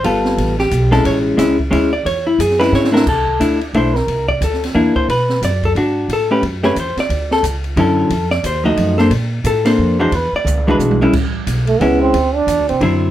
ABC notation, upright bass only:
X:1
M:3/4
L:1/8
Q:"Swing" 1/4=178
K:A
V:1 name="Upright bass" clef=bass
=G,,,2 A,,,2 B,,,2 | A,,,2 C,,2 D,,2 | E,,2 F,,2 G,,2 | =C,,2 D,,2 B,,,2 |
=C,,2 D,,2 E,, z | B,,2 F,,2 G,,2 | A,,2 F,,2 E,, z | D,,2 C,,2 F,,2 |
=F,,2 _E,,2 _G,,2 | _B,,2 A,,2 =F,,2 | E,, z C,,2 B,,,2 | A,,,2 B,,,2 C,,2 |
D,,2 (3E,, D,, =C,, F,,2 |]